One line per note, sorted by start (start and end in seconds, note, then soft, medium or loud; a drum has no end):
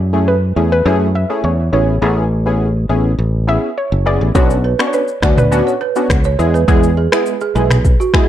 0.00 0.52 F#2 loud
0.00 0.24 E5 loud
0.13 0.35 A3 medium
0.13 0.35 C#4 medium
0.13 0.35 E4 medium
0.13 0.35 G#4 medium
0.28 0.69 B4 medium
0.56 0.82 E2 medium
0.56 0.79 A3 medium
0.56 0.79 C#4 medium
0.56 0.79 E4 medium
0.56 0.79 G#4 medium
0.72 1.12 B4 medium
0.85 1.24 F#2 loud
0.85 1.08 A3 medium
0.85 1.08 C#4 medium
0.85 1.08 E4 medium
0.85 1.08 G#4 loud
1.15 1.45 E5 loud
1.30 1.51 A3 medium
1.30 1.51 C#4 medium
1.30 1.51 E4 medium
1.30 1.52 G#4 medium
1.44 1.69 E2 medium
1.44 1.57 C#5 medium
1.72 1.98 A1 loud
1.72 1.95 B3 medium
1.72 1.95 C#4 medium
1.72 1.95 E4 medium
1.72 1.95 G#4 medium
1.72 3.73 C#5 medium
2.02 2.85 A1 loud
2.02 2.24 B3 medium
2.02 2.24 C#4 medium
2.02 2.24 E4 medium
2.02 2.24 G#4 loud
2.46 2.68 B3 medium
2.46 2.68 C#4 medium
2.46 2.68 E4 medium
2.46 2.68 G#4 medium
2.89 3.15 A1 medium
2.89 3.12 B3 medium
2.89 3.12 C#4 medium
2.89 3.12 E4 medium
2.89 3.12 G#4 medium
3.19 3.57 A1 loud
3.47 3.70 B3 medium
3.47 3.70 C#4 medium
3.47 3.70 E4 medium
3.47 3.70 G#4 medium
3.47 3.78 E5 loud
3.78 4.04 C#5 medium
3.92 4.17 F#1 medium
4.06 4.28 B3 medium
4.06 4.28 C#4 medium
4.06 4.28 E4 medium
4.06 4.28 G#4 medium
4.06 4.89 D5 loud
4.21 4.33 A1 medium
4.35 4.73 B1 loud
4.35 4.57 B3 loud
4.35 4.57 C#4 medium
4.35 4.57 D4 medium
4.35 4.57 F#4 loud
4.35 4.43 C#5 medium
4.35 kick loud
4.35 shaker medium
4.50 shaker medium
4.64 4.72 B4 medium
4.79 5.01 B3 medium
4.79 5.01 C#4 medium
4.79 5.01 D4 medium
4.79 5.01 F#4 medium
4.79 4.87 D5 medium
4.79 finger snap medium
4.79 cross-stick loud
4.79 shaker medium
4.87 4.94 C#5 medium
4.93 5.35 B4 medium
4.93 5.01 C#5 medium
4.93 shaker medium
5.08 shaker soft
5.22 5.61 D2 loud
5.22 5.44 B3 medium
5.22 5.45 C#4 medium
5.22 5.45 D4 medium
5.22 5.45 F#4 medium
5.22 5.31 D5 medium
5.22 finger snap medium
5.22 kick loud
5.22 cross-stick medium
5.22 shaker medium
5.38 6.35 B4 medium
5.38 5.45 D5 medium
5.38 mid tom loud
5.38 shaker medium
5.51 5.74 B3 loud
5.51 5.74 C#4 medium
5.51 5.74 D4 medium
5.51 5.74 F#4 loud
5.51 shaker medium
5.67 5.74 C#5 medium
5.67 shaker soft
5.81 5.89 B4 medium
5.96 6.17 B3 medium
5.96 6.18 C#4 medium
5.96 6.18 D4 medium
5.96 6.18 F#4 medium
5.96 shaker medium
6.10 6.35 C#2 loud
6.10 finger snap medium
6.10 kick loud
6.10 cross-stick loud
6.10 shaker medium
6.24 6.32 C#5 medium
6.24 shaker medium
6.39 6.64 E2 loud
6.39 6.61 G#3 medium
6.39 6.61 B3 medium
6.39 6.61 E4 medium
6.39 6.61 G#4 medium
6.39 shaker medium
6.54 6.62 B4 medium
6.54 shaker soft
6.68 7.06 E2 loud
6.68 6.90 G#3 loud
6.68 6.90 B3 medium
6.68 6.90 E4 medium
6.68 6.90 G#4 loud
6.68 6.76 B4 loud
6.68 kick loud
6.68 shaker medium
6.83 shaker medium
6.97 7.05 G#4 medium
7.12 7.34 G#3 medium
7.12 7.34 B3 medium
7.12 7.34 E4 medium
7.12 7.34 G#4 medium
7.12 7.20 B4 medium
7.12 finger snap medium
7.12 cross-stick loud
7.12 shaker medium
7.26 shaker medium
7.41 7.49 G#4 medium
7.41 shaker soft
7.55 7.94 B1 medium
7.55 7.78 G#3 medium
7.55 7.78 B3 medium
7.55 7.78 E4 medium
7.55 7.78 G#4 medium
7.55 7.64 B4 medium
7.55 shaker medium
7.70 finger snap medium
7.70 cross-stick loud
7.70 mid tom loud
7.70 shaker medium
7.85 kick loud
7.85 shaker medium
8.00 8.07 F#4 medium
8.00 shaker soft
8.13 8.29 G#3 medium
8.13 8.29 B3 medium
8.13 8.29 E4 medium
8.13 8.29 G#4 medium
8.13 finger snap medium
8.13 kick loud
8.13 cross-stick loud